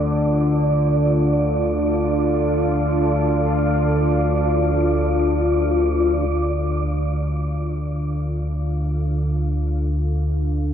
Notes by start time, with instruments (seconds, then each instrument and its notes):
Already playing: synth drone D2 D3, ambient pad D4 F4, synth texture D5
0.44 ambient pad A4
1.32 ambient pad F5
6.29 synth drone D2 D3